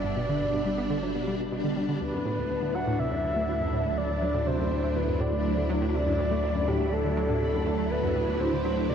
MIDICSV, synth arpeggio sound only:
0, 0, Header, 1, 2, 480
1, 0, Start_track
1, 0, Tempo, 491803
1, 42, Time_signature, 4, 2, 24, 8
1, 8734, End_track
2, 0, Start_track
2, 0, Title_t, "Synth arpeggio sound"
2, 0, Program_c, 0, 84
2, 42, Note_on_c, 0, 43, 79
2, 116, Note_off_c, 0, 43, 0
2, 163, Note_on_c, 0, 47, 79
2, 237, Note_off_c, 0, 47, 0
2, 283, Note_on_c, 0, 50, 95
2, 394, Note_off_c, 0, 50, 0
2, 403, Note_on_c, 0, 43, 76
2, 447, Note_off_c, 0, 43, 0
2, 522, Note_on_c, 0, 43, 84
2, 597, Note_off_c, 0, 43, 0
2, 641, Note_on_c, 0, 55, 79
2, 686, Note_off_c, 0, 55, 0
2, 762, Note_on_c, 0, 59, 100
2, 807, Note_off_c, 0, 59, 0
2, 881, Note_on_c, 0, 50, 99
2, 926, Note_off_c, 0, 50, 0
2, 1001, Note_on_c, 0, 54, 77
2, 1076, Note_off_c, 0, 54, 0
2, 1121, Note_on_c, 0, 47, 76
2, 1233, Note_off_c, 0, 47, 0
2, 1241, Note_on_c, 0, 55, 77
2, 1316, Note_off_c, 0, 55, 0
2, 1362, Note_on_c, 0, 47, 76
2, 1407, Note_off_c, 0, 47, 0
2, 1483, Note_on_c, 0, 47, 95
2, 1527, Note_off_c, 0, 47, 0
2, 1600, Note_on_c, 0, 50, 78
2, 1646, Note_off_c, 0, 50, 0
2, 1721, Note_on_c, 0, 55, 76
2, 1766, Note_off_c, 0, 55, 0
2, 1842, Note_on_c, 0, 50, 77
2, 1916, Note_off_c, 0, 50, 0
2, 1962, Note_on_c, 0, 38, 79
2, 2036, Note_off_c, 0, 38, 0
2, 2081, Note_on_c, 0, 42, 79
2, 2156, Note_off_c, 0, 42, 0
2, 2201, Note_on_c, 0, 45, 102
2, 2313, Note_off_c, 0, 45, 0
2, 2323, Note_on_c, 0, 38, 79
2, 2367, Note_off_c, 0, 38, 0
2, 2443, Note_on_c, 0, 38, 84
2, 2517, Note_off_c, 0, 38, 0
2, 2562, Note_on_c, 0, 50, 75
2, 2607, Note_off_c, 0, 50, 0
2, 2683, Note_on_c, 0, 54, 99
2, 2727, Note_off_c, 0, 54, 0
2, 2802, Note_on_c, 0, 45, 99
2, 2847, Note_off_c, 0, 45, 0
2, 2923, Note_on_c, 0, 48, 78
2, 2997, Note_off_c, 0, 48, 0
2, 3043, Note_on_c, 0, 42, 70
2, 3154, Note_off_c, 0, 42, 0
2, 3161, Note_on_c, 0, 38, 104
2, 3206, Note_off_c, 0, 38, 0
2, 3282, Note_on_c, 0, 57, 79
2, 3357, Note_off_c, 0, 57, 0
2, 3401, Note_on_c, 0, 38, 79
2, 3476, Note_off_c, 0, 38, 0
2, 3520, Note_on_c, 0, 42, 77
2, 3596, Note_off_c, 0, 42, 0
2, 3641, Note_on_c, 0, 45, 99
2, 3753, Note_off_c, 0, 45, 0
2, 3761, Note_on_c, 0, 38, 80
2, 3806, Note_off_c, 0, 38, 0
2, 3880, Note_on_c, 0, 38, 76
2, 3956, Note_off_c, 0, 38, 0
2, 4000, Note_on_c, 0, 50, 76
2, 4046, Note_off_c, 0, 50, 0
2, 4119, Note_on_c, 0, 54, 99
2, 4165, Note_off_c, 0, 54, 0
2, 4239, Note_on_c, 0, 45, 103
2, 4285, Note_off_c, 0, 45, 0
2, 4359, Note_on_c, 0, 48, 80
2, 4435, Note_off_c, 0, 48, 0
2, 4479, Note_on_c, 0, 42, 81
2, 4592, Note_off_c, 0, 42, 0
2, 4599, Note_on_c, 0, 38, 95
2, 4645, Note_off_c, 0, 38, 0
2, 4719, Note_on_c, 0, 57, 76
2, 4795, Note_off_c, 0, 57, 0
2, 4839, Note_on_c, 0, 38, 81
2, 4915, Note_off_c, 0, 38, 0
2, 4959, Note_on_c, 0, 42, 71
2, 5035, Note_off_c, 0, 42, 0
2, 5080, Note_on_c, 0, 45, 101
2, 5193, Note_off_c, 0, 45, 0
2, 5200, Note_on_c, 0, 38, 78
2, 5246, Note_off_c, 0, 38, 0
2, 5321, Note_on_c, 0, 38, 81
2, 5396, Note_off_c, 0, 38, 0
2, 5441, Note_on_c, 0, 50, 71
2, 5486, Note_off_c, 0, 50, 0
2, 5560, Note_on_c, 0, 54, 106
2, 5606, Note_off_c, 0, 54, 0
2, 5682, Note_on_c, 0, 45, 104
2, 5726, Note_off_c, 0, 45, 0
2, 5803, Note_on_c, 0, 48, 82
2, 5877, Note_off_c, 0, 48, 0
2, 5922, Note_on_c, 0, 42, 76
2, 6034, Note_off_c, 0, 42, 0
2, 6042, Note_on_c, 0, 38, 100
2, 6087, Note_off_c, 0, 38, 0
2, 6162, Note_on_c, 0, 57, 77
2, 6237, Note_off_c, 0, 57, 0
2, 6282, Note_on_c, 0, 38, 83
2, 6356, Note_off_c, 0, 38, 0
2, 6400, Note_on_c, 0, 42, 77
2, 6475, Note_off_c, 0, 42, 0
2, 6521, Note_on_c, 0, 45, 100
2, 6633, Note_off_c, 0, 45, 0
2, 6641, Note_on_c, 0, 38, 75
2, 6686, Note_off_c, 0, 38, 0
2, 6762, Note_on_c, 0, 38, 83
2, 6837, Note_off_c, 0, 38, 0
2, 6880, Note_on_c, 0, 50, 71
2, 6926, Note_off_c, 0, 50, 0
2, 7001, Note_on_c, 0, 54, 105
2, 7046, Note_off_c, 0, 54, 0
2, 7121, Note_on_c, 0, 45, 107
2, 7166, Note_off_c, 0, 45, 0
2, 7241, Note_on_c, 0, 48, 81
2, 7316, Note_off_c, 0, 48, 0
2, 7362, Note_on_c, 0, 42, 77
2, 7474, Note_off_c, 0, 42, 0
2, 7481, Note_on_c, 0, 38, 105
2, 7526, Note_off_c, 0, 38, 0
2, 7601, Note_on_c, 0, 57, 76
2, 7676, Note_off_c, 0, 57, 0
2, 7721, Note_on_c, 0, 38, 77
2, 7796, Note_off_c, 0, 38, 0
2, 7842, Note_on_c, 0, 42, 84
2, 7916, Note_off_c, 0, 42, 0
2, 7963, Note_on_c, 0, 45, 104
2, 8074, Note_off_c, 0, 45, 0
2, 8083, Note_on_c, 0, 38, 84
2, 8127, Note_off_c, 0, 38, 0
2, 8203, Note_on_c, 0, 38, 82
2, 8277, Note_off_c, 0, 38, 0
2, 8323, Note_on_c, 0, 50, 77
2, 8367, Note_off_c, 0, 50, 0
2, 8441, Note_on_c, 0, 54, 99
2, 8486, Note_off_c, 0, 54, 0
2, 8561, Note_on_c, 0, 45, 99
2, 8606, Note_off_c, 0, 45, 0
2, 8681, Note_on_c, 0, 48, 83
2, 8734, Note_off_c, 0, 48, 0
2, 8734, End_track
0, 0, End_of_file